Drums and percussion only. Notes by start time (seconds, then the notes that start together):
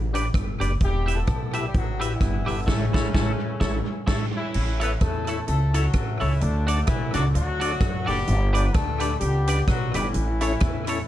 0.15 closed hi-hat
0.34 kick, cross-stick, closed hi-hat
0.61 closed hi-hat
0.80 kick, closed hi-hat
1.08 closed hi-hat
1.27 kick, cross-stick, closed hi-hat
1.53 closed hi-hat
1.74 kick, closed hi-hat
2.01 closed hi-hat
2.21 kick, cross-stick, closed hi-hat
2.48 open hi-hat
2.68 kick, snare, crash
2.94 kick, snare
3.14 kick, snare
3.61 kick, snare
4.07 kick, snare, crash
4.54 crash
4.81 closed hi-hat
5.01 kick, cross-stick, closed hi-hat
5.27 closed hi-hat
5.48 closed hi-hat
5.74 closed hi-hat
5.93 kick, cross-stick, closed hi-hat
6.21 open hi-hat
6.41 closed hi-hat
6.68 closed hi-hat
6.87 kick, cross-stick, closed hi-hat
7.14 closed hi-hat
7.35 closed hi-hat
7.61 closed hi-hat
7.80 kick, cross-stick, closed hi-hat
8.07 open hi-hat
8.27 closed hi-hat
8.55 closed hi-hat
8.74 kick, cross-stick, closed hi-hat
9.00 closed hi-hat
9.21 closed hi-hat
9.47 closed hi-hat
9.67 kick, cross-stick, closed hi-hat
9.94 closed hi-hat
10.14 closed hi-hat
10.41 closed hi-hat
10.60 kick, cross-stick, closed hi-hat
10.87 closed hi-hat